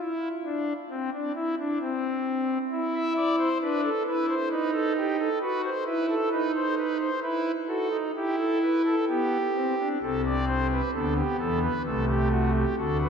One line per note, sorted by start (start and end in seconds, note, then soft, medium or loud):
0.00 0.28 E4 medium
0.45 0.73 D4 medium
0.90 1.10 C4 medium
1.13 1.32 D4 medium
1.35 1.55 E4 medium
1.59 1.78 D4 medium
1.81 2.58 C4 medium
2.71 3.49 E4 medium
2.95 3.13 E5 medium
3.17 3.36 D5 medium
3.38 3.58 C5 medium
3.62 3.90 D4 medium
3.62 3.81 B4 medium
3.83 4.03 A4 medium
4.06 4.34 E4 medium
4.06 4.26 B4 medium
4.29 4.48 C5 medium
4.51 5.29 D#4 medium
4.51 4.71 B4 medium
4.73 4.93 A4 medium
4.97 5.16 G4 medium
5.19 5.39 A4 medium
5.42 5.70 F#4 medium
5.42 5.61 B4 medium
5.64 5.84 C5 medium
5.86 6.14 E4 medium
5.86 6.06 B4 medium
6.10 6.29 A4 medium
6.31 7.10 D#4 medium
6.31 6.51 B4 medium
6.55 6.75 C5 medium
6.78 6.98 B4 medium
6.99 7.20 C5 medium
7.23 7.51 E4 medium
7.23 7.51 B4 medium
7.68 7.88 F#4 medium
7.68 7.97 A4 medium
7.91 8.11 D#4 medium
8.16 8.95 E4 medium
8.16 8.35 G4 medium
8.38 8.58 A4 medium
8.62 8.82 B4 medium
8.86 9.05 A4 medium
9.09 9.38 B3 medium
9.09 9.88 G4 medium
9.55 9.75 C4 medium
9.79 9.98 D4 medium
10.02 10.82 C2 medium
10.02 10.81 C3 medium
10.02 10.81 C4 medium
10.02 10.22 A4 medium
10.26 10.45 D5 medium
10.47 10.67 C5 medium
10.71 10.91 B4 medium
10.94 11.22 D2 soft
10.94 11.22 D3 soft
10.94 11.73 B3 soft
10.94 11.14 A4 medium
11.17 11.37 G4 medium
11.39 11.68 E2 medium
11.39 11.68 E3 medium
11.39 11.59 A4 medium
11.62 11.82 B4 medium
11.85 12.64 C2 medium
11.85 12.65 C3 medium
11.85 12.65 A3 medium
11.85 12.05 A4 medium
12.08 12.28 G4 medium
12.31 12.51 F#4 medium
12.56 12.75 G4 medium
12.77 13.06 D2 medium
12.77 13.06 D3 medium
12.77 13.09 F#4 medium
12.77 12.97 A4 medium
13.02 13.09 B4 medium